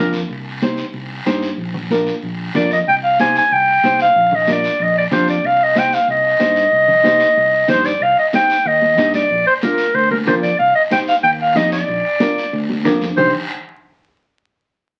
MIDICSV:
0, 0, Header, 1, 5, 480
1, 0, Start_track
1, 0, Key_signature, -3, "minor"
1, 0, Tempo, 321716
1, 452, Time_signature, 4, 2, 24, 8
1, 22368, End_track
2, 0, Start_track
2, 0, Title_t, "Clarinet"
2, 0, Program_c, 0, 71
2, 0, Note_on_c, 0, 70, 78
2, 185, Note_off_c, 0, 70, 0
2, 3817, Note_on_c, 0, 74, 87
2, 4035, Note_off_c, 0, 74, 0
2, 4067, Note_on_c, 0, 75, 90
2, 4171, Note_off_c, 0, 75, 0
2, 4303, Note_on_c, 0, 79, 107
2, 4407, Note_off_c, 0, 79, 0
2, 4531, Note_on_c, 0, 77, 91
2, 4752, Note_off_c, 0, 77, 0
2, 4780, Note_on_c, 0, 80, 98
2, 4996, Note_off_c, 0, 80, 0
2, 5046, Note_on_c, 0, 80, 103
2, 5268, Note_on_c, 0, 79, 109
2, 5290, Note_off_c, 0, 80, 0
2, 5976, Note_off_c, 0, 79, 0
2, 5997, Note_on_c, 0, 77, 99
2, 6492, Note_on_c, 0, 75, 90
2, 6514, Note_off_c, 0, 77, 0
2, 6708, Note_off_c, 0, 75, 0
2, 6746, Note_on_c, 0, 74, 89
2, 7199, Note_on_c, 0, 75, 92
2, 7221, Note_off_c, 0, 74, 0
2, 7421, Note_off_c, 0, 75, 0
2, 7428, Note_on_c, 0, 74, 88
2, 7531, Note_off_c, 0, 74, 0
2, 7650, Note_on_c, 0, 72, 90
2, 7870, Note_off_c, 0, 72, 0
2, 7902, Note_on_c, 0, 74, 87
2, 8148, Note_on_c, 0, 77, 100
2, 8170, Note_off_c, 0, 74, 0
2, 8401, Note_on_c, 0, 75, 93
2, 8423, Note_off_c, 0, 77, 0
2, 8627, Note_on_c, 0, 79, 89
2, 8650, Note_off_c, 0, 75, 0
2, 8863, Note_on_c, 0, 77, 92
2, 8885, Note_off_c, 0, 79, 0
2, 9093, Note_off_c, 0, 77, 0
2, 9105, Note_on_c, 0, 75, 103
2, 11435, Note_off_c, 0, 75, 0
2, 11482, Note_on_c, 0, 72, 89
2, 11725, Note_on_c, 0, 74, 91
2, 11748, Note_off_c, 0, 72, 0
2, 11976, Note_on_c, 0, 77, 106
2, 11998, Note_off_c, 0, 74, 0
2, 12210, Note_off_c, 0, 77, 0
2, 12219, Note_on_c, 0, 75, 89
2, 12323, Note_off_c, 0, 75, 0
2, 12462, Note_on_c, 0, 79, 101
2, 12936, Note_on_c, 0, 75, 101
2, 12958, Note_off_c, 0, 79, 0
2, 13642, Note_off_c, 0, 75, 0
2, 13651, Note_on_c, 0, 74, 97
2, 14095, Note_off_c, 0, 74, 0
2, 14124, Note_on_c, 0, 72, 97
2, 14232, Note_off_c, 0, 72, 0
2, 14367, Note_on_c, 0, 70, 85
2, 14840, Note_on_c, 0, 72, 95
2, 14862, Note_off_c, 0, 70, 0
2, 15072, Note_off_c, 0, 72, 0
2, 15081, Note_on_c, 0, 70, 78
2, 15191, Note_off_c, 0, 70, 0
2, 15331, Note_on_c, 0, 72, 85
2, 15438, Note_off_c, 0, 72, 0
2, 15555, Note_on_c, 0, 74, 88
2, 15784, Note_off_c, 0, 74, 0
2, 15798, Note_on_c, 0, 77, 100
2, 16026, Note_off_c, 0, 77, 0
2, 16045, Note_on_c, 0, 75, 92
2, 16154, Note_off_c, 0, 75, 0
2, 16295, Note_on_c, 0, 79, 85
2, 16402, Note_off_c, 0, 79, 0
2, 16539, Note_on_c, 0, 77, 96
2, 16645, Note_off_c, 0, 77, 0
2, 16759, Note_on_c, 0, 79, 107
2, 16870, Note_off_c, 0, 79, 0
2, 17029, Note_on_c, 0, 77, 94
2, 17251, Note_on_c, 0, 75, 87
2, 17273, Note_off_c, 0, 77, 0
2, 17481, Note_off_c, 0, 75, 0
2, 17490, Note_on_c, 0, 74, 88
2, 19112, Note_off_c, 0, 74, 0
2, 19646, Note_on_c, 0, 72, 88
2, 19872, Note_off_c, 0, 72, 0
2, 22368, End_track
3, 0, Start_track
3, 0, Title_t, "Nylon-string guitar"
3, 0, Program_c, 1, 24
3, 0, Note_on_c, 1, 62, 83
3, 0, Note_on_c, 1, 65, 67
3, 0, Note_on_c, 1, 70, 86
3, 300, Note_off_c, 1, 62, 0
3, 304, Note_off_c, 1, 65, 0
3, 310, Note_off_c, 1, 70, 0
3, 923, Note_on_c, 1, 63, 69
3, 931, Note_on_c, 1, 67, 73
3, 933, Note_on_c, 1, 72, 79
3, 1262, Note_off_c, 1, 63, 0
3, 1267, Note_off_c, 1, 67, 0
3, 1267, Note_off_c, 1, 72, 0
3, 1881, Note_on_c, 1, 63, 84
3, 1883, Note_on_c, 1, 67, 77
3, 1887, Note_on_c, 1, 72, 101
3, 2221, Note_off_c, 1, 63, 0
3, 2222, Note_off_c, 1, 67, 0
3, 2222, Note_off_c, 1, 72, 0
3, 2846, Note_on_c, 1, 62, 72
3, 2854, Note_on_c, 1, 65, 70
3, 2854, Note_on_c, 1, 70, 91
3, 3184, Note_off_c, 1, 62, 0
3, 3186, Note_off_c, 1, 65, 0
3, 3187, Note_off_c, 1, 70, 0
3, 3796, Note_on_c, 1, 62, 74
3, 3803, Note_on_c, 1, 65, 65
3, 3811, Note_on_c, 1, 70, 81
3, 4137, Note_off_c, 1, 62, 0
3, 4140, Note_off_c, 1, 65, 0
3, 4144, Note_off_c, 1, 70, 0
3, 4767, Note_on_c, 1, 63, 64
3, 4770, Note_on_c, 1, 67, 60
3, 4779, Note_on_c, 1, 72, 69
3, 5102, Note_off_c, 1, 63, 0
3, 5102, Note_off_c, 1, 67, 0
3, 5108, Note_off_c, 1, 72, 0
3, 5728, Note_on_c, 1, 63, 75
3, 5738, Note_on_c, 1, 67, 63
3, 5743, Note_on_c, 1, 72, 78
3, 6062, Note_off_c, 1, 63, 0
3, 6068, Note_off_c, 1, 67, 0
3, 6068, Note_off_c, 1, 72, 0
3, 6682, Note_on_c, 1, 62, 70
3, 6688, Note_on_c, 1, 65, 60
3, 6695, Note_on_c, 1, 70, 69
3, 7019, Note_off_c, 1, 62, 0
3, 7020, Note_off_c, 1, 65, 0
3, 7025, Note_off_c, 1, 70, 0
3, 7623, Note_on_c, 1, 62, 79
3, 7636, Note_on_c, 1, 65, 68
3, 7638, Note_on_c, 1, 67, 88
3, 7969, Note_off_c, 1, 62, 0
3, 7975, Note_off_c, 1, 67, 0
3, 7976, Note_off_c, 1, 65, 0
3, 8579, Note_on_c, 1, 63, 64
3, 8584, Note_on_c, 1, 67, 57
3, 8587, Note_on_c, 1, 72, 69
3, 8927, Note_off_c, 1, 63, 0
3, 8928, Note_off_c, 1, 67, 0
3, 8931, Note_off_c, 1, 72, 0
3, 9537, Note_on_c, 1, 63, 75
3, 9541, Note_on_c, 1, 67, 71
3, 9548, Note_on_c, 1, 72, 85
3, 9886, Note_off_c, 1, 63, 0
3, 9887, Note_off_c, 1, 67, 0
3, 9892, Note_off_c, 1, 72, 0
3, 10493, Note_on_c, 1, 63, 79
3, 10507, Note_on_c, 1, 67, 75
3, 10513, Note_on_c, 1, 72, 79
3, 10844, Note_off_c, 1, 63, 0
3, 10851, Note_off_c, 1, 67, 0
3, 10852, Note_off_c, 1, 72, 0
3, 11456, Note_on_c, 1, 63, 90
3, 11463, Note_on_c, 1, 67, 82
3, 11471, Note_on_c, 1, 72, 98
3, 11807, Note_off_c, 1, 63, 0
3, 11808, Note_off_c, 1, 67, 0
3, 11813, Note_off_c, 1, 72, 0
3, 12423, Note_on_c, 1, 63, 64
3, 12433, Note_on_c, 1, 67, 58
3, 12441, Note_on_c, 1, 72, 65
3, 12770, Note_off_c, 1, 63, 0
3, 12775, Note_off_c, 1, 67, 0
3, 12777, Note_off_c, 1, 72, 0
3, 13387, Note_on_c, 1, 63, 73
3, 13400, Note_on_c, 1, 67, 64
3, 13402, Note_on_c, 1, 75, 86
3, 13733, Note_off_c, 1, 63, 0
3, 13735, Note_off_c, 1, 67, 0
3, 13740, Note_off_c, 1, 75, 0
3, 14360, Note_on_c, 1, 62, 58
3, 14369, Note_on_c, 1, 65, 62
3, 14373, Note_on_c, 1, 70, 74
3, 14701, Note_off_c, 1, 62, 0
3, 14702, Note_off_c, 1, 65, 0
3, 14706, Note_off_c, 1, 70, 0
3, 15298, Note_on_c, 1, 62, 76
3, 15310, Note_on_c, 1, 65, 72
3, 15318, Note_on_c, 1, 70, 77
3, 15649, Note_off_c, 1, 62, 0
3, 15655, Note_off_c, 1, 65, 0
3, 15657, Note_off_c, 1, 70, 0
3, 16268, Note_on_c, 1, 63, 69
3, 16279, Note_on_c, 1, 67, 68
3, 16281, Note_on_c, 1, 72, 75
3, 16615, Note_off_c, 1, 63, 0
3, 16618, Note_off_c, 1, 67, 0
3, 16621, Note_off_c, 1, 72, 0
3, 17233, Note_on_c, 1, 63, 79
3, 17238, Note_on_c, 1, 67, 65
3, 17247, Note_on_c, 1, 75, 91
3, 17578, Note_off_c, 1, 67, 0
3, 17579, Note_off_c, 1, 63, 0
3, 17581, Note_off_c, 1, 75, 0
3, 18204, Note_on_c, 1, 62, 89
3, 18209, Note_on_c, 1, 65, 70
3, 18216, Note_on_c, 1, 70, 90
3, 18544, Note_off_c, 1, 62, 0
3, 18546, Note_off_c, 1, 65, 0
3, 18550, Note_off_c, 1, 70, 0
3, 19163, Note_on_c, 1, 62, 98
3, 19171, Note_on_c, 1, 65, 86
3, 19174, Note_on_c, 1, 70, 92
3, 19504, Note_off_c, 1, 62, 0
3, 19508, Note_off_c, 1, 65, 0
3, 19509, Note_off_c, 1, 70, 0
3, 19645, Note_on_c, 1, 63, 78
3, 19657, Note_on_c, 1, 67, 75
3, 19658, Note_on_c, 1, 72, 93
3, 19874, Note_off_c, 1, 63, 0
3, 19875, Note_off_c, 1, 72, 0
3, 19877, Note_off_c, 1, 67, 0
3, 22368, End_track
4, 0, Start_track
4, 0, Title_t, "Fingered electric bass"
4, 0, Program_c, 2, 33
4, 0, Note_on_c, 2, 41, 86
4, 343, Note_off_c, 2, 41, 0
4, 447, Note_on_c, 2, 36, 95
4, 1216, Note_off_c, 2, 36, 0
4, 1397, Note_on_c, 2, 36, 93
4, 1786, Note_off_c, 2, 36, 0
4, 1878, Note_on_c, 2, 43, 81
4, 2266, Note_off_c, 2, 43, 0
4, 2352, Note_on_c, 2, 34, 89
4, 3126, Note_off_c, 2, 34, 0
4, 3327, Note_on_c, 2, 34, 94
4, 3711, Note_off_c, 2, 34, 0
4, 3793, Note_on_c, 2, 41, 82
4, 4183, Note_off_c, 2, 41, 0
4, 4292, Note_on_c, 2, 36, 98
4, 5057, Note_off_c, 2, 36, 0
4, 5250, Note_on_c, 2, 36, 95
4, 5632, Note_off_c, 2, 36, 0
4, 5729, Note_on_c, 2, 36, 82
4, 6111, Note_off_c, 2, 36, 0
4, 6204, Note_on_c, 2, 34, 94
4, 6972, Note_off_c, 2, 34, 0
4, 7157, Note_on_c, 2, 34, 95
4, 7543, Note_off_c, 2, 34, 0
4, 7651, Note_on_c, 2, 41, 87
4, 8032, Note_off_c, 2, 41, 0
4, 8116, Note_on_c, 2, 36, 92
4, 8886, Note_off_c, 2, 36, 0
4, 9072, Note_on_c, 2, 36, 97
4, 9460, Note_off_c, 2, 36, 0
4, 9551, Note_on_c, 2, 43, 87
4, 9940, Note_off_c, 2, 43, 0
4, 10033, Note_on_c, 2, 36, 85
4, 10805, Note_off_c, 2, 36, 0
4, 10997, Note_on_c, 2, 36, 91
4, 11384, Note_off_c, 2, 36, 0
4, 11465, Note_on_c, 2, 43, 81
4, 11856, Note_off_c, 2, 43, 0
4, 11952, Note_on_c, 2, 36, 85
4, 12149, Note_off_c, 2, 36, 0
4, 12913, Note_on_c, 2, 39, 97
4, 13406, Note_off_c, 2, 39, 0
4, 13406, Note_on_c, 2, 43, 84
4, 13790, Note_off_c, 2, 43, 0
4, 13882, Note_on_c, 2, 34, 80
4, 14075, Note_off_c, 2, 34, 0
4, 14836, Note_on_c, 2, 38, 107
4, 15324, Note_off_c, 2, 38, 0
4, 15324, Note_on_c, 2, 41, 94
4, 15710, Note_off_c, 2, 41, 0
4, 15806, Note_on_c, 2, 36, 86
4, 15999, Note_off_c, 2, 36, 0
4, 16758, Note_on_c, 2, 39, 104
4, 17243, Note_off_c, 2, 39, 0
4, 17243, Note_on_c, 2, 41, 101
4, 17630, Note_off_c, 2, 41, 0
4, 17725, Note_on_c, 2, 34, 84
4, 17919, Note_off_c, 2, 34, 0
4, 18697, Note_on_c, 2, 38, 110
4, 19168, Note_off_c, 2, 38, 0
4, 19168, Note_on_c, 2, 41, 99
4, 19554, Note_off_c, 2, 41, 0
4, 19649, Note_on_c, 2, 36, 96
4, 19874, Note_off_c, 2, 36, 0
4, 22368, End_track
5, 0, Start_track
5, 0, Title_t, "Drums"
5, 192, Note_on_c, 9, 73, 68
5, 341, Note_off_c, 9, 73, 0
5, 425, Note_on_c, 9, 74, 67
5, 438, Note_on_c, 9, 63, 35
5, 574, Note_off_c, 9, 74, 0
5, 587, Note_off_c, 9, 63, 0
5, 916, Note_on_c, 9, 73, 71
5, 930, Note_on_c, 9, 63, 92
5, 1065, Note_off_c, 9, 73, 0
5, 1079, Note_off_c, 9, 63, 0
5, 1152, Note_on_c, 9, 73, 62
5, 1301, Note_off_c, 9, 73, 0
5, 1400, Note_on_c, 9, 74, 67
5, 1414, Note_on_c, 9, 63, 35
5, 1549, Note_off_c, 9, 74, 0
5, 1563, Note_off_c, 9, 63, 0
5, 1889, Note_on_c, 9, 73, 68
5, 1891, Note_on_c, 9, 63, 80
5, 2039, Note_off_c, 9, 73, 0
5, 2041, Note_off_c, 9, 63, 0
5, 2122, Note_on_c, 9, 73, 71
5, 2271, Note_off_c, 9, 73, 0
5, 2366, Note_on_c, 9, 63, 34
5, 2372, Note_on_c, 9, 74, 66
5, 2515, Note_off_c, 9, 63, 0
5, 2521, Note_off_c, 9, 74, 0
5, 2599, Note_on_c, 9, 64, 73
5, 2748, Note_off_c, 9, 64, 0
5, 2842, Note_on_c, 9, 63, 80
5, 2853, Note_on_c, 9, 73, 65
5, 2991, Note_off_c, 9, 63, 0
5, 3002, Note_off_c, 9, 73, 0
5, 3083, Note_on_c, 9, 73, 65
5, 3232, Note_off_c, 9, 73, 0
5, 3320, Note_on_c, 9, 74, 68
5, 3330, Note_on_c, 9, 63, 35
5, 3469, Note_off_c, 9, 74, 0
5, 3480, Note_off_c, 9, 63, 0
5, 3801, Note_on_c, 9, 63, 83
5, 3801, Note_on_c, 9, 64, 84
5, 3804, Note_on_c, 9, 73, 63
5, 3950, Note_off_c, 9, 63, 0
5, 3950, Note_off_c, 9, 64, 0
5, 3953, Note_off_c, 9, 73, 0
5, 4043, Note_on_c, 9, 73, 62
5, 4192, Note_off_c, 9, 73, 0
5, 4280, Note_on_c, 9, 74, 68
5, 4287, Note_on_c, 9, 63, 33
5, 4430, Note_off_c, 9, 74, 0
5, 4436, Note_off_c, 9, 63, 0
5, 4769, Note_on_c, 9, 63, 93
5, 4769, Note_on_c, 9, 73, 68
5, 4918, Note_off_c, 9, 73, 0
5, 4919, Note_off_c, 9, 63, 0
5, 5006, Note_on_c, 9, 73, 66
5, 5155, Note_off_c, 9, 73, 0
5, 5246, Note_on_c, 9, 63, 33
5, 5247, Note_on_c, 9, 74, 74
5, 5395, Note_off_c, 9, 63, 0
5, 5396, Note_off_c, 9, 74, 0
5, 5725, Note_on_c, 9, 63, 81
5, 5730, Note_on_c, 9, 73, 66
5, 5874, Note_off_c, 9, 63, 0
5, 5879, Note_off_c, 9, 73, 0
5, 5958, Note_on_c, 9, 73, 69
5, 6107, Note_off_c, 9, 73, 0
5, 6204, Note_on_c, 9, 74, 59
5, 6210, Note_on_c, 9, 63, 33
5, 6354, Note_off_c, 9, 74, 0
5, 6359, Note_off_c, 9, 63, 0
5, 6444, Note_on_c, 9, 64, 73
5, 6593, Note_off_c, 9, 64, 0
5, 6676, Note_on_c, 9, 73, 71
5, 6679, Note_on_c, 9, 63, 87
5, 6825, Note_off_c, 9, 73, 0
5, 6828, Note_off_c, 9, 63, 0
5, 6923, Note_on_c, 9, 73, 71
5, 7072, Note_off_c, 9, 73, 0
5, 7155, Note_on_c, 9, 74, 75
5, 7169, Note_on_c, 9, 63, 35
5, 7304, Note_off_c, 9, 74, 0
5, 7318, Note_off_c, 9, 63, 0
5, 7634, Note_on_c, 9, 63, 86
5, 7634, Note_on_c, 9, 64, 86
5, 7641, Note_on_c, 9, 73, 63
5, 7783, Note_off_c, 9, 63, 0
5, 7783, Note_off_c, 9, 64, 0
5, 7790, Note_off_c, 9, 73, 0
5, 7875, Note_on_c, 9, 73, 62
5, 8024, Note_off_c, 9, 73, 0
5, 8121, Note_on_c, 9, 63, 37
5, 8125, Note_on_c, 9, 74, 68
5, 8270, Note_off_c, 9, 63, 0
5, 8274, Note_off_c, 9, 74, 0
5, 8592, Note_on_c, 9, 63, 94
5, 8600, Note_on_c, 9, 73, 74
5, 8741, Note_off_c, 9, 63, 0
5, 8749, Note_off_c, 9, 73, 0
5, 8842, Note_on_c, 9, 73, 71
5, 8991, Note_off_c, 9, 73, 0
5, 9067, Note_on_c, 9, 74, 71
5, 9069, Note_on_c, 9, 63, 35
5, 9217, Note_off_c, 9, 74, 0
5, 9218, Note_off_c, 9, 63, 0
5, 9550, Note_on_c, 9, 73, 64
5, 9561, Note_on_c, 9, 63, 83
5, 9699, Note_off_c, 9, 73, 0
5, 9710, Note_off_c, 9, 63, 0
5, 9786, Note_on_c, 9, 73, 68
5, 9935, Note_off_c, 9, 73, 0
5, 10020, Note_on_c, 9, 74, 61
5, 10027, Note_on_c, 9, 63, 33
5, 10169, Note_off_c, 9, 74, 0
5, 10176, Note_off_c, 9, 63, 0
5, 10267, Note_on_c, 9, 64, 70
5, 10416, Note_off_c, 9, 64, 0
5, 10510, Note_on_c, 9, 63, 92
5, 10514, Note_on_c, 9, 73, 69
5, 10659, Note_off_c, 9, 63, 0
5, 10663, Note_off_c, 9, 73, 0
5, 10740, Note_on_c, 9, 73, 63
5, 10889, Note_off_c, 9, 73, 0
5, 10983, Note_on_c, 9, 74, 71
5, 10997, Note_on_c, 9, 63, 34
5, 11132, Note_off_c, 9, 74, 0
5, 11146, Note_off_c, 9, 63, 0
5, 11465, Note_on_c, 9, 73, 69
5, 11467, Note_on_c, 9, 63, 86
5, 11467, Note_on_c, 9, 64, 82
5, 11614, Note_off_c, 9, 73, 0
5, 11616, Note_off_c, 9, 63, 0
5, 11616, Note_off_c, 9, 64, 0
5, 11708, Note_on_c, 9, 73, 73
5, 11857, Note_off_c, 9, 73, 0
5, 11943, Note_on_c, 9, 74, 55
5, 11948, Note_on_c, 9, 63, 35
5, 12092, Note_off_c, 9, 74, 0
5, 12098, Note_off_c, 9, 63, 0
5, 12432, Note_on_c, 9, 73, 71
5, 12441, Note_on_c, 9, 63, 103
5, 12581, Note_off_c, 9, 73, 0
5, 12590, Note_off_c, 9, 63, 0
5, 12681, Note_on_c, 9, 73, 73
5, 12830, Note_off_c, 9, 73, 0
5, 12920, Note_on_c, 9, 74, 67
5, 12921, Note_on_c, 9, 63, 34
5, 13069, Note_off_c, 9, 74, 0
5, 13070, Note_off_c, 9, 63, 0
5, 13159, Note_on_c, 9, 63, 65
5, 13308, Note_off_c, 9, 63, 0
5, 13394, Note_on_c, 9, 73, 58
5, 13399, Note_on_c, 9, 63, 86
5, 13543, Note_off_c, 9, 73, 0
5, 13548, Note_off_c, 9, 63, 0
5, 13635, Note_on_c, 9, 73, 66
5, 13640, Note_on_c, 9, 63, 77
5, 13784, Note_off_c, 9, 73, 0
5, 13790, Note_off_c, 9, 63, 0
5, 13869, Note_on_c, 9, 74, 64
5, 13879, Note_on_c, 9, 63, 34
5, 14018, Note_off_c, 9, 74, 0
5, 14028, Note_off_c, 9, 63, 0
5, 14348, Note_on_c, 9, 73, 77
5, 14366, Note_on_c, 9, 63, 98
5, 14497, Note_off_c, 9, 73, 0
5, 14516, Note_off_c, 9, 63, 0
5, 14591, Note_on_c, 9, 73, 65
5, 14740, Note_off_c, 9, 73, 0
5, 14839, Note_on_c, 9, 74, 69
5, 14844, Note_on_c, 9, 63, 32
5, 14988, Note_off_c, 9, 74, 0
5, 14993, Note_off_c, 9, 63, 0
5, 15085, Note_on_c, 9, 63, 68
5, 15234, Note_off_c, 9, 63, 0
5, 15313, Note_on_c, 9, 73, 64
5, 15333, Note_on_c, 9, 63, 81
5, 15333, Note_on_c, 9, 64, 80
5, 15462, Note_off_c, 9, 73, 0
5, 15482, Note_off_c, 9, 63, 0
5, 15482, Note_off_c, 9, 64, 0
5, 15562, Note_on_c, 9, 73, 67
5, 15711, Note_off_c, 9, 73, 0
5, 15806, Note_on_c, 9, 63, 35
5, 15811, Note_on_c, 9, 74, 68
5, 15956, Note_off_c, 9, 63, 0
5, 15960, Note_off_c, 9, 74, 0
5, 16284, Note_on_c, 9, 63, 94
5, 16284, Note_on_c, 9, 73, 75
5, 16433, Note_off_c, 9, 63, 0
5, 16434, Note_off_c, 9, 73, 0
5, 16526, Note_on_c, 9, 73, 68
5, 16675, Note_off_c, 9, 73, 0
5, 16762, Note_on_c, 9, 63, 33
5, 16765, Note_on_c, 9, 74, 76
5, 16912, Note_off_c, 9, 63, 0
5, 16914, Note_off_c, 9, 74, 0
5, 17245, Note_on_c, 9, 63, 85
5, 17254, Note_on_c, 9, 73, 62
5, 17394, Note_off_c, 9, 63, 0
5, 17403, Note_off_c, 9, 73, 0
5, 17491, Note_on_c, 9, 73, 69
5, 17640, Note_off_c, 9, 73, 0
5, 17727, Note_on_c, 9, 63, 37
5, 17729, Note_on_c, 9, 74, 63
5, 17876, Note_off_c, 9, 63, 0
5, 17879, Note_off_c, 9, 74, 0
5, 18205, Note_on_c, 9, 63, 100
5, 18214, Note_on_c, 9, 73, 81
5, 18355, Note_off_c, 9, 63, 0
5, 18364, Note_off_c, 9, 73, 0
5, 18473, Note_on_c, 9, 73, 71
5, 18622, Note_off_c, 9, 73, 0
5, 18697, Note_on_c, 9, 63, 32
5, 18703, Note_on_c, 9, 74, 74
5, 18846, Note_off_c, 9, 63, 0
5, 18852, Note_off_c, 9, 74, 0
5, 18941, Note_on_c, 9, 63, 72
5, 19090, Note_off_c, 9, 63, 0
5, 19176, Note_on_c, 9, 73, 65
5, 19180, Note_on_c, 9, 63, 91
5, 19180, Note_on_c, 9, 64, 79
5, 19325, Note_off_c, 9, 73, 0
5, 19329, Note_off_c, 9, 63, 0
5, 19329, Note_off_c, 9, 64, 0
5, 19419, Note_on_c, 9, 73, 75
5, 19429, Note_on_c, 9, 63, 71
5, 19568, Note_off_c, 9, 73, 0
5, 19578, Note_off_c, 9, 63, 0
5, 19661, Note_on_c, 9, 64, 102
5, 19670, Note_on_c, 9, 74, 97
5, 19811, Note_off_c, 9, 64, 0
5, 19819, Note_off_c, 9, 74, 0
5, 22368, End_track
0, 0, End_of_file